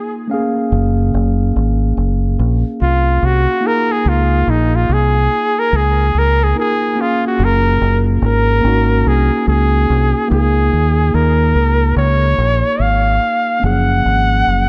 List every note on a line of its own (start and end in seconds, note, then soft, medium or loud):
0.00 0.24 A#3 medium
0.00 0.26 D#4 medium
0.00 0.27 F4 medium
0.00 0.14 G#4 medium
0.00 0.27 G#4 medium
0.28 0.37 A3 medium
0.28 3.60 C#4 medium
0.28 3.60 F5 medium
0.34 3.59 A#3 medium
0.34 3.62 G#4 medium
0.72 1.10 F#1 medium
1.14 1.52 F#1 medium
1.56 1.94 G#1 medium
1.97 2.35 F#1 medium
2.39 2.62 A#1 loud
2.82 3.19 C2 medium
2.82 3.27 F4 loud
3.23 3.46 C2 medium
3.23 3.68 F#4 loud
3.61 6.50 A#3 medium
3.61 6.51 D#4 medium
3.65 6.52 F4 medium
3.65 6.53 G#4 medium
3.65 3.93 A#4 loud
3.92 4.10 G#4 loud
4.06 4.44 C#2 medium
4.06 4.51 F4 loud
4.47 4.86 A#1 loud
4.47 4.77 D#4 medium
4.76 4.94 F4 medium
4.89 5.27 C2 medium
4.89 5.61 G#4 loud
5.59 5.78 A#4 loud
5.73 6.11 C#2 medium
5.73 6.20 G#4 loud
6.15 6.53 C#2 medium
6.15 6.45 A#4 loud
6.44 6.58 G#4 loud
6.55 6.94 A#3 medium
6.55 6.97 D#4 medium
6.55 6.97 F4 medium
6.55 6.99 A#4 medium
6.60 7.03 G#4 loud
6.95 8.59 A#3 medium
6.95 8.60 C#4 medium
6.95 8.61 F4 medium
7.01 7.25 F4 loud
7.01 8.62 G#4 medium
7.27 7.46 F#4 medium
7.39 7.77 F#1 loud
7.44 8.01 A#4 loud
7.81 8.19 F#1 medium
8.22 8.60 G#1 loud
8.22 9.09 A#4 loud
8.61 9.02 G#1 loud
8.61 10.25 A#3 medium
8.61 10.27 C#4 medium
8.65 10.28 D#4 medium
8.65 10.29 F#4 medium
9.06 9.29 C2 medium
9.06 9.47 G#4 medium
9.47 9.85 C#2 medium
9.47 10.27 G#4 medium
9.90 10.13 C2 medium
10.28 10.69 C#2 loud
10.28 13.58 A#3 medium
10.28 13.59 D#4 medium
10.28 13.59 F4 medium
10.28 11.16 G#4 medium
10.34 13.61 G#4 medium
10.73 11.11 D#2 medium
11.14 11.52 D#2 medium
11.14 11.97 A#4 medium
11.55 11.93 C#2 medium
11.96 12.35 C#2 loud
11.96 12.82 C#5 loud
12.38 12.62 A#1 medium
12.80 13.18 G#1 medium
12.80 13.64 F5 medium
13.60 14.01 F#1 loud
13.60 14.69 A#3 medium
13.60 14.69 C#4 medium
13.64 14.69 F3 medium
13.64 14.69 G#4 medium
13.64 14.69 F#5 loud
14.05 14.43 G#1 medium
14.47 14.69 F#1 medium